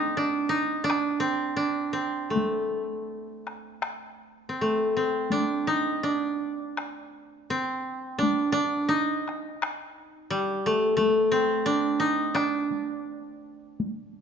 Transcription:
Already playing: koto A3 C4 D#4
0.17 koto D4
0.49 koto D#4
0.84 koto D4
0.90 taiko rim
1.20 koto C4
1.57 koto D4
1.93 koto C4
2.30 koto A3
2.36 taiko high
3.47 taiko rim
3.83 taiko rim
4.49 koto C4
4.61 koto A3
4.97 koto C4
5.31 koto D4, taiko high
5.67 koto D#4
6.03 koto D4
6.78 taiko rim
7.50 koto C4
8.19 koto D4, taiko high
8.52 koto D4
8.89 koto D#4
9.28 taiko rim
9.62 taiko rim
10.30 koto G3
10.66 koto A3
10.97 koto A3, taiko high
11.32 koto C4
11.66 koto D4
12.00 koto D#4
12.35 koto D4, taiko rim
12.71 taiko high
13.80 taiko high

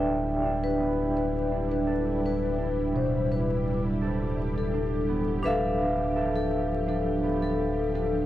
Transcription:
Already playing: sub bass D1, string machine G3 E4 G4, harp B3 D4 A4, vibraphone D4 D5 E5 G5
0.44 harp D4
0.64 vibraphone B4
0.80 harp B3
1.17 vibraphone B4
1.52 harp D4
1.72 vibraphone B4
1.87 harp A4
2.26 vibraphone B4
2.58 harp D4
2.94 harp B2, vibraphone C5
3.32 vibraphone B4
3.66 harp D4
4.01 harp A4
4.58 vibraphone A4
4.73 harp D4
5.09 harp B3
5.43 sub bass D1, string machine F3, vibraphone D4 A4 B4 E5
5.47 vibraphone F5
5.80 harp D4
6.16 harp A4
6.35 vibraphone A4
6.87 harp D4, vibraphone A4
7.23 harp B3
7.42 vibraphone A4
7.95 harp D4, vibraphone A4

